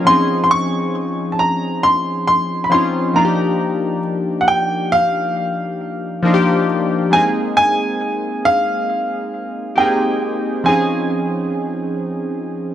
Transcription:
0.05 synth keys F3 C4 C#4 D#4, grand piano C6
0.10 synth keys G#4
0.44 grand piano C6
0.51 grand piano C#6
1.32 grand piano A5
1.39 grand piano A#5
1.83 grand piano C6
2.27 grand piano C6
2.64 grand piano B5
2.70 synth keys F3 C4 C#4 D#4, grand piano C6
2.74 synth keys F4
3.14 synth keys F3 A#3 D4 D#4, grand piano A#5
3.18 synth keys F4
3.25 synth keys G4
4.41 grand piano F#5
4.48 grand piano G5
4.92 grand piano F5
6.23 synth keys F3 A#3 D4 D#4
6.27 synth keys F4
6.34 synth keys G4
7.11 synth keys G#3 A#3 C4 D#4, grand piano G#5
7.16 synth keys G#4
7.57 grand piano G#5
8.45 grand piano F5
9.76 synth keys A#3 C4 D#4 G4, grand piano G5
9.80 synth keys G#4
10.64 synth keys F3 C4 C#4 D#4, grand piano G#5
10.69 synth keys G#4

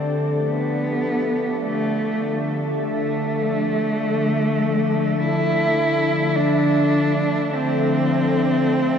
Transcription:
Already playing: ambient pad D3 F3 D4 G4 A4 D5, synth drone D3 A3
0.48 cello B3
0.82 ambient pad E5
1.65 cello A3
2.84 cello A3
5.19 cello E4
6.36 cello D4
7.54 cello C4

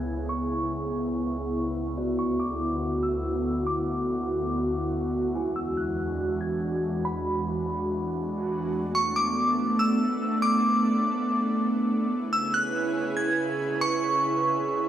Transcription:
Already playing: analog synth pad C#2 C#3 B3 E4 G#4, kalimba C#4 E4 B5, synth bell G#6
0.29 synth bell C#6
1.97 analog synth pad D2 D3 F#4, kalimba F#4 D5
2.19 synth bell C#6
2.40 synth bell D6
3.03 synth bell E6
3.67 synth bell D6
5.35 analog synth pad E2 E3 G#3 D4, kalimba E4 G#5
5.56 synth bell E6
5.77 synth bell F#6
6.41 synth bell G#6
7.05 synth bell B5
8.74 analog synth pad A3 B3 D4
8.95 synth bell C#6
9.16 synth bell D6
9.79 synth bell E6
10.42 synth bell D6
12.12 analog synth pad C#3 C#4 E4 G#4 B4
12.33 synth bell E6
12.54 synth bell F#6
13.17 synth bell G#6
13.81 synth bell C#6

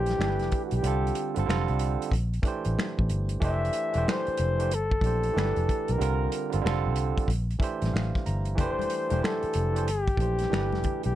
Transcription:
Already playing: fingered electric bass A#1, tine electric piano E3 A3 D4 G4 C5, flugelhorn G4
0.06 snare, closed hi-hat
0.18 fingered electric bass G1, tine electric piano E3 A3 D4 G4, finger snap, snare
0.23 tine electric piano A4
0.30 tine electric piano B4
0.39 fingered electric bass F1, snare, closed hi-hat
0.51 kick, closed hi-hat
0.65 flugelhorn F#4
0.71 fingered electric bass B1, flugelhorn G4, closed hi-hat
0.82 fingered electric bass C2, tine electric piano D3 G3 C4 F4, closed hi-hat
0.87 tine electric piano A4
1.07 closed hi-hat
1.15 closed hi-hat
1.34 fingered electric bass G1, tine electric piano D3 G3 C4, closed hi-hat
1.38 tine electric piano F4 A4
1.46 fingered electric bass F1, tine electric piano D3 G3 C4 F4, snare
1.50 tine electric piano A4, finger snap
1.68 fingered electric bass C2, closed hi-hat
1.79 closed hi-hat
2.02 closed hi-hat
2.12 fingered electric bass A#1, kick, closed hi-hat
2.33 closed hi-hat
2.42 tine electric piano E3 A3 D4 G4, kick, closed hi-hat
2.48 tine electric piano C5
2.65 fingered electric bass A1, closed hi-hat
2.79 finger snap, snare
2.99 fingered electric bass A1, kick
3.09 fingered electric bass G1, closed hi-hat
3.29 closed hi-hat
3.40 fingered electric bass F1, tine electric piano E3 A3 D4, flugelhorn E5, kick, closed hi-hat
3.44 tine electric piano G4 C5
3.65 closed hi-hat
3.73 closed hi-hat
3.93 fingered electric bass E1, tine electric piano E3 A3 D4 G4, closed hi-hat
3.98 tine electric piano C5
4.08 flugelhorn C5, finger snap, snare
4.26 muted fingered electric bass stroke, closed hi-hat
4.37 fingered electric bass F1, closed hi-hat
4.57 tine electric piano E3 A3 D4 G4, closed hi-hat
4.63 tine electric piano C5
4.71 fingered electric bass G1, flugelhorn A4, closed hi-hat
4.91 kick
5.01 fingered electric bass A#1, tine electric piano E3 A3 D4 G4, kick, closed hi-hat
5.07 tine electric piano C5
5.23 closed hi-hat
5.33 fingered electric bass G1, tine electric piano E3 A3 D4 G4
5.38 tine electric piano B4, finger snap, snare
5.56 fingered electric bass F1, closed hi-hat
5.69 kick, closed hi-hat
5.88 fingered electric bass B1, closed hi-hat
5.92 flugelhorn A#4
5.98 fingered electric bass C2, tine electric piano D3 G3 C4 F4, closed hi-hat
6.03 tine electric piano A#4
6.32 closed hi-hat
6.50 fingered electric bass G1, tine electric piano D3 G3 C4 F4, closed hi-hat
6.55 tine electric piano A4
6.62 fingered electric bass F1, tine electric piano D3 G3 C4
6.66 tine electric piano F4 A4, finger snap, snare
6.86 fingered electric bass C2
6.96 closed hi-hat
7.18 kick, closed hi-hat
7.28 fingered electric bass A#1, kick, closed hi-hat
7.50 closed hi-hat
7.59 tine electric piano E3 A3 D4 G4 E5, muted fingered electric bass stroke, kick, closed hi-hat
7.64 tine electric piano C5
7.82 fingered electric bass A1, snare, closed hi-hat
7.94 fingered electric bass A1, tine electric piano F5, finger snap, snare
8.15 kick, snare
8.26 fingered electric bass G1, tine electric piano A#5, closed hi-hat
8.45 closed hi-hat
8.56 fingered electric bass F1, tine electric piano E3 A3 D4 G4, flugelhorn C5, kick, closed hi-hat, muted conga, low conga
8.60 tine electric piano C5
8.79 closed hi-hat, high conga
8.90 closed hi-hat
9.09 fingered electric bass E1, tine electric piano E3 A3 D4 G4, closed hi-hat, high conga
9.14 tine electric piano C5
9.23 flugelhorn A4, finger snap, snare, muted conga
9.43 muted fingered electric bass stroke, closed hi-hat, muted conga
9.53 fingered electric bass F1, closed hi-hat
9.73 tine electric piano E3 A3 D4 G4, closed hi-hat
9.78 tine electric piano C5
9.87 fingered electric bass G1, flugelhorn G4, closed hi-hat
10.07 kick, closed hi-hat, muted conga
10.17 fingered electric bass A#1, tine electric piano E3 A3 D4 G4, kick, closed hi-hat
10.22 tine electric piano C5
10.38 snare, closed hi-hat
10.49 fingered electric bass G1, tine electric piano E3 A3 D4 G4, snare, muted conga, high conga
10.54 tine electric piano B4, finger snap
10.72 fingered electric bass F1, snare, muted conga, high conga
10.83 kick, closed hi-hat, low conga
11.03 fingered electric bass B1, flugelhorn G4, closed hi-hat

